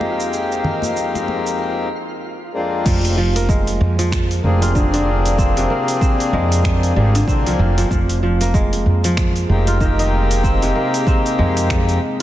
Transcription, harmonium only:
0.00 1.87 F2 medium
0.00 1.87 G#3 medium
0.00 1.88 A#3 medium
0.00 1.88 C4 medium
0.00 1.88 D#4 medium
0.00 1.89 G4 loud
2.53 3.17 F2 medium
2.53 3.17 G#3 medium
2.53 3.17 A#3 medium
2.53 3.17 C4 medium
2.53 3.18 D4 medium
2.53 3.18 F4 medium
4.42 4.71 F3 medium
4.42 4.72 A#3 medium
4.42 4.72 C4 medium
4.42 4.72 D4 medium
4.42 4.73 G#4 medium
4.73 6.92 F3 loud
4.73 6.92 A#3 loud
4.73 6.93 C4 loud
4.73 6.93 D4 medium
4.77 6.94 G#4 loud
6.95 7.24 F3 medium
6.95 7.25 A#3 medium
6.95 7.25 C4 medium
6.95 7.25 D4 medium
6.95 7.25 G#4 loud
7.26 7.89 F3 loud
7.26 7.89 A#3 medium
7.26 7.89 C4 medium
7.26 7.90 D4 medium
7.26 7.90 G#5 loud
9.48 9.77 G#3 medium
9.48 9.77 A#3 medium
9.48 9.78 C4 medium
9.48 9.78 D#4 medium
9.48 9.78 G4 medium
9.79 11.98 G#3 loud
9.79 11.98 A#3 medium
9.79 11.99 C4 medium
9.79 11.99 D#4 medium
9.83 12.00 G4 loud

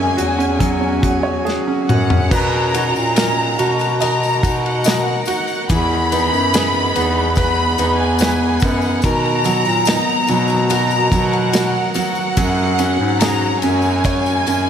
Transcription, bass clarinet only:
0.00 0.14 F#2 medium
0.18 1.58 E2 medium
1.89 2.28 F#2 medium
2.32 2.91 B2 loud
2.95 3.55 A#2 medium
3.59 4.39 B2 medium
4.43 5.24 B2 loud
5.70 6.29 E2 loud
6.32 6.91 F#2 medium
6.95 7.74 E2 loud
7.78 8.58 E2 loud
8.63 9.01 F#2 medium
9.04 9.62 B2 loud
9.67 10.00 A#2 medium
10.29 11.08 B2 loud
11.12 11.91 B2 loud
12.38 12.96 F#2 loud
12.99 13.58 G#2 medium
13.63 14.43 F#2 loud
14.47 14.70 F#2 medium

